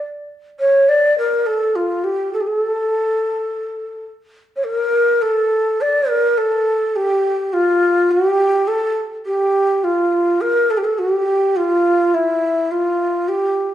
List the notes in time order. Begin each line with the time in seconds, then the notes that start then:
0.60 C#5
0.89 D5
1.18 A#4
1.46 A4
1.76 F4
2.04 G4
2.33 A4
2.41 G4
2.47 A4
4.56 C#5
4.64 A#4
5.22 A4
5.81 D5
6.09 A#4
6.38 A4
6.96 G4
7.53 F4
8.11 G4
8.68 A4
9.26 G4
9.84 F4
10.41 A#4
10.70 A4
10.77 G4
10.84 A4
10.99 F#4
11.11 G4
11.56 F4
12.14 E4
12.71 F4
13.29 G4